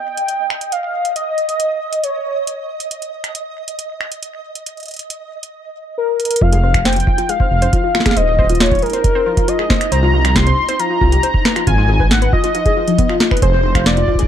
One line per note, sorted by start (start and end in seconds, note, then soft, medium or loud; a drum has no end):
0.00 5.54 D#5 medium
0.00 0.74 G5 loud
0.17 closed hi-hat medium
0.28 closed hi-hat medium
0.50 finger snap soft
0.61 closed hi-hat medium
0.72 1.15 F5 loud
0.72 closed hi-hat medium
1.05 closed hi-hat medium
1.16 2.05 D#5 loud
1.16 closed hi-hat medium
1.38 closed hi-hat soft
1.49 closed hi-hat medium
1.60 closed hi-hat medium
1.93 closed hi-hat medium
2.04 2.69 C#5 medium
2.04 closed hi-hat medium
2.47 closed hi-hat medium
2.80 closed hi-hat soft
2.91 closed hi-hat medium
3.02 closed hi-hat soft
3.24 finger snap soft
3.24 closed hi-hat medium
3.35 closed hi-hat medium
3.68 closed hi-hat medium
3.79 closed hi-hat medium
4.01 finger snap soft
4.12 closed hi-hat medium
4.23 closed hi-hat medium
4.55 closed hi-hat soft
4.66 closed hi-hat medium
4.77 closed hi-hat soft
4.80 closed hi-hat soft
4.83 closed hi-hat soft
4.86 closed hi-hat soft
4.88 closed hi-hat soft
4.91 closed hi-hat soft
4.94 closed hi-hat soft
4.96 closed hi-hat soft
4.99 closed hi-hat soft
5.10 closed hi-hat medium
5.43 closed hi-hat medium
5.98 6.43 A#4 medium
6.20 closed hi-hat soft
6.25 closed hi-hat medium
6.31 closed hi-hat medium
6.36 closed hi-hat medium
6.41 7.02 F1 loud
6.41 14.28 D#4 medium
6.41 6.50 F4 medium
6.41 6.87 F5 loud
6.41 kick loud
6.53 6.58 G#4 medium
6.53 closed hi-hat medium
6.63 6.69 C5 medium
6.74 finger snap medium
6.74 kick loud
6.74 closed hi-hat medium
6.85 6.90 C5 loud
6.85 7.31 G5 loud
6.85 snare loud
6.85 closed hi-hat medium
6.93 7.05 F4 medium
6.93 closed hi-hat medium
6.96 closed hi-hat soft
7.00 closed hi-hat soft
7.07 7.12 F4 medium
7.07 kick loud
7.18 7.27 F4 medium
7.18 closed hi-hat medium
7.29 7.34 G#4 medium
7.29 8.09 F5 loud
7.29 closed hi-hat medium
7.40 7.45 C5 medium
7.40 kick loud
7.51 7.66 F1 medium
7.62 7.67 C5 loud
7.62 closed hi-hat medium
7.73 7.82 F4 medium
7.73 kick loud
7.73 closed hi-hat medium
7.84 7.89 F4 medium
7.95 8.03 F4 medium
7.95 finger snap medium
7.95 snare medium
8.00 snare medium
8.06 8.11 G#4 medium
8.06 8.18 F5 medium
8.06 finger snap medium
8.06 kick loud
8.06 snare medium
8.06 closed hi-hat medium
8.11 snare medium
8.17 8.77 D#1 loud
8.17 8.22 C5 medium
8.17 8.62 D#5 loud
8.17 closed hi-hat medium
8.39 8.44 C5 loud
8.39 kick loud
8.49 8.58 F4 medium
8.49 closed hi-hat medium
8.55 closed hi-hat soft
8.60 8.66 F4 medium
8.60 8.84 C#5 loud
8.60 snare loud
8.60 closed hi-hat medium
8.71 8.80 F4 medium
8.71 kick loud
8.71 closed hi-hat soft
8.75 closed hi-hat soft
8.79 9.50 A#4 loud
8.79 closed hi-hat soft
8.82 8.88 G#4 medium
8.82 closed hi-hat soft
8.86 closed hi-hat soft
8.90 8.99 C5 medium
8.90 closed hi-hat soft
8.93 closed hi-hat medium
9.04 kick loud
9.04 closed hi-hat medium
9.15 9.20 C5 loud
9.26 9.35 F4 medium
9.37 9.42 F4 medium
9.37 kick loud
9.37 closed hi-hat medium
9.48 9.57 F4 medium
9.48 9.91 D#5 loud
9.48 closed hi-hat medium
9.59 9.64 G#4 medium
9.59 finger snap soft
9.70 9.75 C5 medium
9.70 kick loud
9.70 snare loud
9.81 finger snap medium
9.81 closed hi-hat medium
9.92 10.52 C2 loud
9.92 9.97 C5 loud
9.92 10.37 A#5 loud
9.92 closed hi-hat medium
10.03 10.11 F4 medium
10.14 10.19 F4 medium
10.25 10.33 F4 medium
10.25 finger snap medium
10.25 closed hi-hat medium
10.36 10.41 G4 medium
10.36 10.81 C6 loud
10.36 kick loud
10.36 snare loud
10.36 closed hi-hat medium
10.47 10.52 C5 medium
10.47 closed hi-hat soft
10.69 10.74 C5 loud
10.69 closed hi-hat medium
10.79 10.88 F4 medium
10.79 11.67 A#5 loud
10.79 closed hi-hat medium
10.90 10.96 F4 medium
11.01 11.16 C2 medium
11.01 11.10 F4 medium
11.01 kick loud
11.12 11.17 G4 medium
11.12 closed hi-hat medium
11.23 11.28 C5 medium
11.23 closed hi-hat medium
11.34 kick loud
11.45 11.50 B4 loud
11.45 finger snap medium
11.45 snare loud
11.56 11.65 F4 medium
11.56 finger snap medium
11.56 closed hi-hat medium
11.67 12.27 G#1 loud
11.67 11.72 F4 medium
11.67 12.13 G#5 loud
11.67 kick loud
11.67 closed hi-hat medium
11.78 11.87 F4 medium
11.89 11.94 G#4 medium
12.00 12.05 B4 medium
12.00 kick loud
12.11 12.32 F#5 loud
12.11 snare loud
12.11 closed hi-hat medium
12.22 12.27 B4 loud
12.22 closed hi-hat soft
12.33 12.41 F4 medium
12.33 13.17 D#5 loud
12.33 kick loud
12.44 12.49 F4 medium
12.44 closed hi-hat medium
12.55 12.63 F4 medium
12.55 closed hi-hat medium
12.66 12.71 G#4 medium
12.66 kick loud
12.66 closed hi-hat soft
12.77 12.85 F4 medium
12.88 12.96 F3 medium
12.88 closed hi-hat medium
12.98 13.07 B3 medium
12.98 kick loud
12.98 closed hi-hat medium
13.09 13.19 F4 loud
13.09 finger snap soft
13.20 13.26 F4 medium
13.20 snare loud
13.31 13.40 B4 loud
13.31 finger snap soft
13.31 kick loud
13.37 closed hi-hat medium
13.42 14.03 F1 loud
13.42 13.47 G#4 medium
13.42 13.88 C5 medium
13.42 kick loud
13.42 closed hi-hat medium
13.53 13.58 C5 medium
13.75 13.86 F5 medium
13.75 finger snap medium
13.75 kick loud
13.75 closed hi-hat medium
13.86 13.95 F4 medium
13.86 14.28 D5 medium
13.86 snare loud
13.86 closed hi-hat medium
13.97 14.02 F4 medium
13.97 closed hi-hat soft
14.08 14.17 F4 medium
14.08 kick medium
14.15 14.24 G#4 medium
14.15 kick medium
14.15 closed hi-hat soft
14.22 kick medium